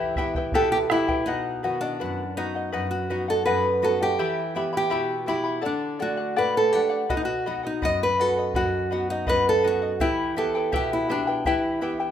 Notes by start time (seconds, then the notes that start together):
Already playing: E3 E4 G4 B4 E5 G5
0.16 B3 E4 G4 B4 E5 G5, bombo low
0.35 E4 B4 G5, bombo low
0.52 B2 E4 G4 A4 B4 E5 G5, bombo low
0.72 G4
0.90 B3 E4 G4 B4 E5 G5, bombo rim
1.08 E4 B4 G5, bombo low
1.26 B2 D#4 B4 D#5 F#5
1.63 D#3 B3 F#4 B4 D#5 F#5
1.81 D4 D#5 F#5
2.00 F#2 B4 F#5
2.37 B3 D#4 F#4 B4 D#5 F#5
2.55 D#5 F#5
2.72 F#2 B4 D#5 F#5
2.91 F#4
3.10 B3 D#4 F#4 B4 D#5 F#5
3.28 A4 D#5 F#5
3.46 F#2 B4 D#5 F#5
3.82 B3 D#4 F#4 A4 B4 D#5 F#5
4.00 G4 D#5 F#5
4.19 E3 E4 G4 E5 G5 B5
4.55 B3 E4 G4 E5 G5 B5
4.73 E4 E5 B5
4.77 G4
4.90 B2 E4 G4 E5 G5 B5
5.26 B3 E4 G4 E5 G5 B5
5.44 E4 E5 B5
5.62 D3 A4 D5 F#5
5.66 D4
5.99 A3 D4 F#4 A4 D5 F#5
6.17 D5 F#5
6.36 A2 A4 B4 D5 F#5
6.57 A4
6.72 A3 D4 G4 A4 D5 F#5
6.89 D5 F#5
7.09 B2 F#4 B4 D#5 F#5, bombo low
7.17 D#4
7.25 F#4
7.46 B3 D#4 F#4 B4 D#5 F#5
7.63 D#4 D#5 F#5
7.82 F#2 B4 D#5 F#5, bombo low
8.03 B4
8.18 B3 D#4 F#4 A4 B4 D#5 F#5
8.37 D#5 F#5
8.54 F#2 F#4 B4 D#5 F#5, bombo low
8.91 B3 D#4 F#4 B4 D#5 F#5
9.10 D#4 D#5 F#5
9.27 F#2 B4 D#5 F#5, bombo low
9.49 A4
9.63 B3 D#4 F#4 B4 D#5 F#5
9.67 F#4
9.82 D#5 F#5
10.00 E3 E4 G4 B4 E5 G5, bombo low
10.36 B3 E4 G4 A4 B4 E5 G5
10.55 E4 B4 G5
10.72 B2 E4 G4 B4 E5 G5, bombo low
10.93 E4
11.09 B3 D4 E4 G4 B4 E5 G5
11.27 E4 B4 G5
11.45 E3 E4 G4 B4 E5 G5, bombo low
11.81 B3 E4 G4 B4 E5 G5
12.00 E4 B4 G5